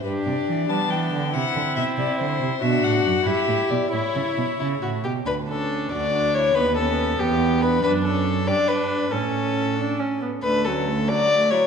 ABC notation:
X:1
M:6/8
L:1/16
Q:3/8=93
K:Clyd
V:1 name="Violin"
D6 B,6 | C12 | [K:D] D6 E6 | E6 E2 F2 G2 |
B2 A4 d4 c2 | B2 A4 G4 B2 | B2 A4 d2 B4 | A8- A2 z2 |
B2 A4 d4 c2 |]
V:2 name="Violin"
B2 d4 a2 g4 | f4 e2 d2 c4 | [K:D] e2 f4 e4 d2 | c8- c2 z2 |
D2 C4 F4 E2 | ^D2 C4 B,4 =D2 | D2 C4 G2 D4 | C8- C2 z2 |
D2 C4 F4 E2 |]
V:3 name="Viola"
G6 D6 | E12 | [K:D] F6 G6 | E8- E z3 |
z2 D6 D4 | B,2 B,4 B,2 B,4 | D6 D6 | C6 D2 C2 B,2 |
A,2 F,2 A,2 F,2 A,2 F,2 |]
V:4 name="Cello" clef=bass
G,,2 C,2 E,2 G,2 E,2 D,2 | C,2 D,2 B,,2 C,2 D,2 C,2 | [K:D] B,,2 A,,2 F,,2 G,,2 A,,2 B,,2 | A,,2 C,2 B,,2 C,2 A,,2 B,,2 |
D,,6 D,,6 | ^D,,6 E,,6 | F,,6 G,,6 | A,,8- A,,2 z2 |
D,,12 |]